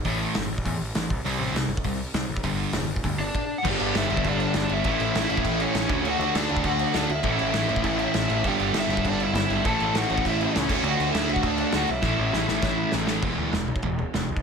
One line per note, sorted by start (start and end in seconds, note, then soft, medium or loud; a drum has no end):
0.05 0.25 A1 medium
0.05 0.35 A2 medium
0.05 0.35 E3 loud
0.05 0.35 A3 loud
0.05 kick medium
0.05 open hi-hat medium
0.35 0.46 G1 loud
0.35 0.49 A2 medium
0.35 0.50 E3 medium
0.35 snare loud
0.35 open hi-hat medium
0.51 0.61 A1 medium
0.58 kick medium
0.65 0.75 E2 medium
0.65 0.79 A2 medium
0.65 0.80 E3 medium
0.65 kick loud
0.65 open hi-hat medium
0.81 0.90 A1 medium
0.95 1.05 A1 loud
0.95 1.09 A2 medium
0.95 1.09 E3 medium
0.95 snare loud
0.95 open hi-hat medium
1.10 1.20 C2 medium
1.10 kick loud
1.25 1.35 C2 loud
1.25 1.54 C3 loud
1.25 1.54 G3 loud
1.25 1.55 C4 loud
1.25 open hi-hat medium
1.39 1.49 A1 loud
1.52 1.63 C2 loud
1.52 1.68 C3 medium
1.52 1.69 G3 medium
1.52 snare loud
1.52 open hi-hat medium
1.67 1.78 G1 medium
1.77 kick medium
1.84 2.05 C2 loud
1.84 1.98 C3 medium
1.84 1.99 G3 medium
1.84 kick medium
1.84 open hi-hat medium
2.14 2.24 C2 loud
2.14 2.28 C3 medium
2.14 2.29 G3 medium
2.14 snare loud
2.14 open hi-hat medium
2.28 2.38 A1 medium
2.37 kick medium
2.43 2.64 G1 loud
2.43 2.73 G2 medium
2.43 2.74 D3 loud
2.43 2.74 G3 loud
2.43 kick medium
2.43 open hi-hat medium
2.73 2.83 E1 loud
2.73 2.88 G2 medium
2.73 2.89 D3 medium
2.73 snare loud
2.73 open hi-hat medium
2.88 2.99 G1 medium
2.96 kick medium
3.04 3.15 D2 medium
3.04 3.19 G2 medium
3.04 3.19 D3 medium
3.04 kick medium
3.04 open hi-hat medium
3.18 3.29 G1 medium
3.18 3.55 D4 medium
3.18 3.56 D5 medium
3.35 kick loud
3.35 crash medium
3.58 3.65 F#5 medium
3.63 3.75 G1 medium
3.63 4.68 G2 medium
3.63 4.09 G2 medium
3.63 4.69 D3 medium
3.63 4.69 G3 medium
3.63 4.68 B3 medium
3.63 kick loud
3.63 crash loud
3.63 crash medium
3.67 4.10 D3 loud
3.67 4.09 G3 loud
3.67 4.85 B3 medium
3.67 4.67 D4 loud
3.67 4.85 D4 loud
3.67 3.94 G4 medium
3.67 3.97 G5 medium
3.80 3.91 G1 medium
3.80 crash medium
3.95 4.05 G1 loud
3.95 4.24 E4 medium
3.95 4.27 E5 medium
3.95 snare loud
3.95 crash medium
4.10 4.20 G1 medium
4.10 4.86 G2 medium
4.10 4.84 D3 medium
4.10 4.84 G3 medium
4.10 crash medium
4.17 kick medium
4.24 4.45 G1 medium
4.24 4.55 D4 medium
4.24 kick loud
4.24 crash medium
4.28 4.55 D5 medium
4.40 crash medium
4.54 4.65 G1 medium
4.54 4.70 D4 medium
4.54 4.70 D5 medium
4.54 snare loud
4.54 crash medium
4.68 4.80 G1 medium
4.68 4.84 D3 medium
4.68 4.85 G3 medium
4.68 4.84 B3 medium
4.68 4.83 D4 medium
4.68 crash medium
4.72 4.83 G2 medium
4.72 5.57 E4 medium
4.72 5.64 E5 medium
4.83 4.95 A1 loud
4.83 5.88 A2 medium
4.83 5.29 A2 loud
4.83 5.87 E3 medium
4.83 5.29 E3 loud
4.83 5.89 A3 loud
4.83 5.28 A3 loud
4.83 5.90 C#4 medium
4.83 5.90 E4 loud
4.83 kick loud
4.83 crash medium
4.87 5.90 C#4 loud
4.87 5.90 E4 loud
5.00 5.10 A1 medium
5.00 crash medium
5.15 5.25 A1 loud
5.15 snare loud
5.15 crash loud
5.28 5.40 A1 medium
5.28 5.90 A2 medium
5.28 5.89 E3 medium
5.28 5.92 A3 medium
5.28 crash medium
5.37 kick medium
5.45 5.65 A1 loud
5.45 kick medium
5.45 crash medium
5.60 6.03 C#4 medium
5.60 6.07 C#5 medium
5.60 crash medium
5.75 5.85 A1 loud
5.75 snare loud
5.75 crash medium
5.88 6.00 D2 medium
5.88 6.91 D3 medium
5.88 6.34 D3 medium
5.88 6.92 A3 loud
5.88 6.36 A3 loud
5.88 6.93 D4 loud
5.88 kick loud
5.88 crash medium
5.92 6.35 D4 loud
5.92 7.10 F#4 loud
5.92 6.95 F#4 loud
6.03 6.14 D2 loud
6.03 crash medium
6.09 6.35 F#4 medium
6.09 6.36 F#5 loud
6.19 6.29 D2 loud
6.19 crash medium
6.35 6.45 D2 loud
6.35 7.09 D3 medium
6.35 7.10 A3 medium
6.35 6.63 D4 medium
6.35 7.10 D4 medium
6.35 6.66 D5 medium
6.35 snare loud
6.35 crash loud
6.49 6.60 D2 medium
6.49 crash medium
6.57 kick loud
6.64 6.84 D2 loud
6.64 6.93 F#4 medium
6.64 6.96 F#5 medium
6.64 kick loud
6.64 crash medium
6.79 crash medium
6.92 7.05 D2 medium
6.92 7.08 D3 medium
6.92 7.08 A3 loud
6.92 7.09 D4 medium
6.92 7.10 F#4 loud
6.92 snare loud
6.92 crash medium
6.97 7.10 D5 medium
7.09 7.19 D2 medium
7.09 7.96 E4 medium
7.09 8.00 E5 loud
7.09 crash medium
7.23 7.34 A1 loud
7.23 8.28 A2 medium
7.23 7.68 A2 loud
7.23 8.28 E3 medium
7.23 7.69 E3 loud
7.23 8.28 A3 loud
7.23 7.69 A3 loud
7.23 8.44 C#4 loud
7.23 8.27 C#4 medium
7.23 8.26 E4 medium
7.23 kick loud
7.23 crash medium
7.27 8.45 E4 medium
7.39 7.50 A1 medium
7.39 crash medium
7.53 7.64 A1 loud
7.53 snare loud
7.53 crash medium
7.69 7.79 A1 medium
7.69 8.45 A2 medium
7.69 8.44 E3 medium
7.69 8.44 A3 medium
7.69 crash medium
7.76 kick medium
7.84 8.05 A1 loud
7.84 kick loud
7.84 crash medium
7.99 8.42 E4 medium
7.99 8.47 E5 loud
7.99 crash medium
8.14 8.25 A1 medium
8.14 snare loud
8.14 crash medium
8.27 8.40 A1 medium
8.27 8.41 A2 medium
8.27 8.43 E3 medium
8.27 8.43 A3 medium
8.27 8.43 C#4 medium
8.27 8.42 E4 medium
8.27 crash medium
8.41 8.55 G1 loud
8.41 9.47 G2 medium
8.41 8.88 G2 loud
8.41 9.48 D3 medium
8.41 9.48 G3 medium
8.41 9.49 B3 medium
8.41 kick loud
8.41 crash medium
8.45 8.89 D3 loud
8.45 8.88 G3 loud
8.45 9.65 B3 medium
8.45 9.47 D4 loud
8.45 9.66 D4 loud
8.45 8.74 G4 medium
8.45 8.74 G5 loud
8.59 8.70 G1 medium
8.59 crash medium
8.73 8.84 G1 loud
8.73 snare loud
8.73 crash loud
8.80 9.05 E4 medium
8.80 9.05 E5 medium
8.87 8.98 G1 medium
8.87 9.64 D3 medium
8.87 9.64 G3 medium
8.87 crash medium
8.92 9.65 G2 medium
8.97 kick loud
9.05 9.25 G1 loud
9.05 9.20 D4 medium
9.05 kick loud
9.05 crash medium
9.10 9.24 D5 medium
9.20 9.63 E4 medium
9.20 9.68 E5 loud
9.20 crash medium
9.33 9.44 G1 loud
9.33 snare loud
9.33 crash medium
9.48 9.60 G#1 medium
9.48 9.65 D3 medium
9.48 9.64 G3 medium
9.48 9.64 B3 medium
9.48 9.63 D4 medium
9.48 crash medium
9.53 9.64 G2 medium
9.64 9.75 A1 loud
9.64 10.69 A2 medium
9.64 10.09 A2 loud
9.64 10.68 E3 medium
9.64 10.10 E3 loud
9.64 10.69 A3 medium
9.64 10.69 C#4 medium
9.64 10.70 C#4 medium
9.64 10.70 E4 medium
9.64 10.70 E4 loud
9.64 9.93 A4 medium
9.64 9.93 A5 loud
9.64 kick loud
9.64 crash medium
9.68 10.11 A3 loud
9.80 9.90 A1 loud
9.80 crash medium
9.94 10.04 A1 loud
9.94 10.23 F#4 medium
9.94 snare loud
9.94 crash medium
9.98 10.26 F#5 loud
10.10 10.20 A1 medium
10.10 10.71 E3 medium
10.10 10.71 A3 medium
10.10 crash medium
10.15 10.69 A2 medium
10.15 kick medium
10.25 10.45 A1 medium
10.25 10.39 E4 medium
10.25 10.41 E5 loud
10.25 kick medium
10.25 crash medium
10.41 10.83 C#4 medium
10.41 10.88 C#5 loud
10.41 crash medium
10.55 10.66 C#2 loud
10.55 snare loud
10.55 crash medium
10.68 10.80 D2 medium
10.68 11.70 D3 loud
10.68 11.13 D3 medium
10.68 11.72 A3 medium
10.68 11.16 A3 loud
10.68 11.73 D4 loud
10.68 11.15 D4 loud
10.68 11.74 F#4 loud
10.68 kick loud
10.68 crash loud
10.72 11.90 F#4 loud
10.83 10.94 D2 loud
10.83 crash medium
10.87 11.07 F#4 medium
10.87 11.10 F#5 loud
11.00 11.10 D2 loud
11.00 crash medium
11.11 11.24 D2 loud
11.11 11.88 D3 medium
11.11 11.30 E4 medium
11.11 11.32 E5 loud
11.11 crash loud
11.15 11.89 A3 medium
11.15 11.90 D4 medium
11.15 snare loud
11.29 11.39 D2 medium
11.29 crash medium
11.33 11.46 F#4 medium
11.33 11.47 F#5 medium
11.33 kick medium
11.43 11.64 D2 loud
11.43 11.73 D4 medium
11.43 11.76 D5 medium
11.43 kick loud
11.43 crash medium
11.58 crash medium
11.71 11.84 D2 medium
11.71 11.87 D3 medium
11.71 11.88 A3 medium
11.71 11.88 D4 medium
11.71 11.89 F#4 medium
11.71 11.89 F#4 loud
11.71 snare loud
11.71 crash medium
11.76 11.90 F#5 loud
11.87 11.99 B1 medium
11.87 12.91 E4 medium
11.87 12.95 E5 medium
11.87 crash medium
12.02 12.13 A1 loud
12.02 13.07 A2 medium
12.02 12.48 A2 loud
12.02 13.08 E3 loud
12.02 12.49 E3 loud
12.02 13.07 A3 loud
12.02 13.06 C#4 medium
12.02 13.24 C#4 loud
12.02 13.04 E4 loud
12.02 13.24 E4 medium
12.02 kick loud
12.02 snare medium
12.06 12.47 A3 loud
12.19 12.29 A1 loud
12.33 12.44 A1 loud
12.33 snare medium
12.48 12.59 A1 medium
12.48 13.23 A2 medium
12.48 13.23 E3 medium
12.48 13.23 A3 medium
12.48 snare medium
12.63 12.84 A1 medium
12.63 kick loud
12.63 snare medium
12.92 13.04 A1 loud
12.92 snare loud
13.06 13.19 A1 medium
13.06 13.24 A2 medium
13.06 13.23 E3 medium
13.06 13.23 A3 medium
13.06 13.23 C#4 medium
13.06 13.22 E4 medium
13.06 snare loud
13.22 13.34 E1 loud
13.22 13.53 E2 medium
13.22 13.53 B2 medium
13.22 13.54 E3 loud
13.22 13.52 G#3 medium
13.22 13.54 B3 medium
13.22 kick loud
13.22 floor tom medium
13.22 crash medium
13.37 13.48 D2 medium
13.37 floor tom medium
13.53 13.63 E1 medium
13.53 13.69 E2 medium
13.53 13.69 B2 medium
13.53 13.67 E3 medium
13.53 13.68 G#3 medium
13.53 snare loud
13.53 floor tom medium
13.67 13.78 B1 medium
13.67 floor tom medium
13.76 kick medium
13.83 14.04 E1 medium
13.83 13.98 E2 medium
13.83 13.99 B2 medium
13.83 13.98 E3 medium
13.83 13.98 G#3 medium
13.83 kick loud
13.83 floor tom medium
13.99 floor tom medium
14.14 14.24 E1 medium
14.14 14.29 E2 medium
14.14 14.29 B2 medium
14.14 14.28 E3 medium
14.14 14.28 G#3 medium
14.14 snare loud
14.14 floor tom medium
14.29 14.40 B1 medium
14.29 floor tom medium
14.37 kick medium